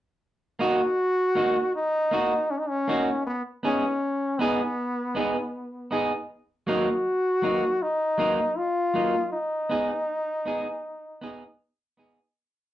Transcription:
0.59 A#3 D#4 F#4
1.35 A#3 D#4 F#4
1.75 D#4
2.11 A#3 D#4 F#4
2.51 C#4
2.60 D#4
2.69 C#4
2.88 A#3 D#4 F#4
3.27 B3
3.63 B3 C#4 D#4 G#4
4.39 B3 D#4 G#4
5.15 B3 D#4 G#4
5.91 B3 D#4 G#4
6.67 F#3 A#3 D#4 F#4
7.42 F#3 A#3 D#4
7.83 D#4
8.18 F#3 A#3 D#4
8.58 F4
8.94 F#3 A#3 D#4
9.33 D#4
9.70 B3 D#4 G#4
10.46 B3 D#4 G#4
11.21 B3 D#4 G#4
11.97 B3 D#4 G#4

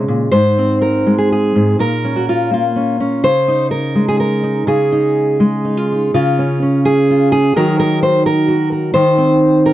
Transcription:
Already playing: C#3 G#3 D#4 C#5
0.08 A#2
0.32 G#2 C5
0.58 C4
0.82 A#4
1.06 G#3
1.18 G#4
1.32 G#4
1.56 G#2
1.79 A#2 A#4
2.04 C#4
2.16 F#4
2.29 F4
2.51 A#3 F4
2.76 C#4
3.00 C#4
3.23 C#3 C5
3.48 D#4
3.71 A#4
3.95 G#3
4.08 G#4
4.20 A#4
4.43 D#4
4.67 C#3 G#4
4.92 D#4
5.40 G#3
5.65 D#4
5.77 F4
5.92 D#4
6.14 C#3 F4
6.39 C#4
6.62 C#4
6.85 G#4
7.10 F4
7.32 G#4
7.56 D#3 F#3 D#4 F#4 A#4
7.80 A#4
8.03 C5
8.26 A#4
8.48 F#4
8.72 A#4
8.94 D#3 C5
9.18 C4
9.66 A#4

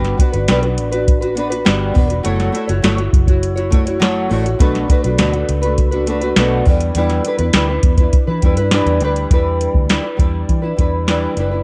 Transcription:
Already playing: G1 G3 B3 D4 F#4 B4
0.05 snare, closed hi-hat
0.17 B3 D4 F#4 B4, kick, closed hi-hat
0.32 G1 D4 F#4 B4, closed hi-hat
0.48 B1 G3 B3 D4 F#4 B4, snare, closed hi-hat
0.62 D4 F#4 B4, closed hi-hat
0.78 A1, closed hi-hat
0.91 D4 F#4 B4, closed hi-hat
1.08 kick, closed hi-hat
1.21 D4 F#4 B4, closed hi-hat
1.35 B3 D4 F#4 B4, closed hi-hat
1.50 D4 F#4 B4, closed hi-hat
1.65 G1 G3 B3 D4 F#4 B4, snare, closed hi-hat
1.94 E1 B3 D4 F#4 B4, kick, open hi-hat
2.09 D4 F#4 B4, closed hi-hat
2.23 F#1 F#3 A3 E4 F#4 C#5, closed hi-hat
2.40 snare, closed hi-hat
2.52 A3 E4 F#4 C#5, closed hi-hat
2.68 F#1 E4 F#4 C#5, closed hi-hat
2.82 G1 F#3 A3 E4 F#4 C#5, snare, closed hi-hat
2.97 F#4 C#5, closed hi-hat
3.01 E4
3.13 F#1, kick, closed hi-hat
3.27 E4 F#4 C#5, kick, closed hi-hat
3.43 closed hi-hat
3.56 E4 F#4 C#5, closed hi-hat
3.70 A3 E4 F#4 C#5, kick, closed hi-hat
3.86 E4 F#4 C#5, closed hi-hat
4.00 F#3 A3 E4 F#4 C#5, snare, closed hi-hat
4.30 A1 A3 E4 F#4 C#5, open hi-hat
4.44 E4 F#4 C#5, closed hi-hat
4.59 B1 B2 F#3 A3 D4 F#4 B4, kick, closed hi-hat
4.75 snare, closed hi-hat
4.88 A3 D4 F#4 B4, kick, closed hi-hat
5.04 B1 A3 D4 F#4 B4, closed hi-hat
5.18 D2 B2 F#3 A3 D4 F#4 B4, snare, closed hi-hat
5.32 A3 D4 F#4 B4, closed hi-hat
5.49 C#2, closed hi-hat
5.62 D4 F#4 B4, closed hi-hat
5.66 A3
5.78 kick, closed hi-hat
5.91 D4 F#4 B4, closed hi-hat
5.95 A3
6.06 A3 D4 F#4 B4, closed hi-hat
6.21 A3 D4 F#4 B4, closed hi-hat
6.36 B1 B2 F#3 A3 D4 F#4 B4, snare, closed hi-hat
6.65 E2 G3 D4 E4 B4, kick, open hi-hat
6.80 closed hi-hat
6.95 E2 E3 G3 D4 E4 B4, closed hi-hat
7.10 snare, closed hi-hat
7.24 G3 D4 E4 B4, closed hi-hat
7.39 E2 E4 B4, closed hi-hat
7.43 D4
7.53 D2 E3 G3 D4 E4 B4, snare, closed hi-hat
7.69 D4 E4 B4
7.83 E2, kick, closed hi-hat
7.97 E4 B4, kick, closed hi-hat
8.02 D4
8.13 kick, closed hi-hat
8.27 E3 D4 E4 B4
8.42 E2 G3 D4 E4 B4, kick, closed hi-hat
8.57 G2 E4 B4, closed hi-hat
8.61 D4
8.71 E3 G3 D4 E4 B4, snare, closed hi-hat
8.86 E2, closed hi-hat
9.01 D2 G3 D4 E4 B4, closed hi-hat
9.16 closed hi-hat
9.31 E2 E3 G3 D4 E4 B4, kick, closed hi-hat
9.61 closed hi-hat
9.74 D2, kick
9.89 E3 G3 D4 E4 B4, snare, closed hi-hat
10.03 D4 E4 B4
10.17 E2 G3 D4 E4, kick, closed hi-hat
10.21 B4
10.49 E3, kick, closed hi-hat
10.62 D4 E4 B4
10.77 E2 G3 D4 E4 B4, kick, closed hi-hat
11.07 E3 G3 D4 E4 B4, snare, closed hi-hat
11.36 F#1 G3 D4 E4 B4, closed hi-hat
11.51 D4 E4 B4

